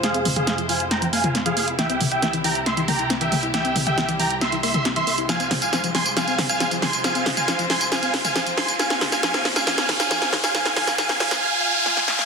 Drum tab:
HH |xxoxxxoxxxoxxxox|xxoxxxoxxxoxxxox|xxoxxxoxxxoxxxox|xxoxxxoxxxoxxxox|
TB |----------------|----------------|----------------|xx-xxx-xxx-xxx-x|
SD |o---o---o---o---|o---o---o---o---|o---o---o---o---|o-o-o-o-o-o-o-o-|
T2 |--oo-------o----|--o-------o---o-|--oo-------o----|--o-------o---o-|

HH |xxoxxxoxxxoxxxox|xxoxxxoxxxoxxxox|xxoxxoox--------|
TB |xx-xxx-xxx-xxx-x|xx-xxx-xxx-xxx-x|xx-xxx-x--------|
SD |o-o-o-o-o-o-o-o-|oooooooooooooooo|oooooooo----oooo|
T2 |--oo-------o----|--o-------o---o-|--oo------------|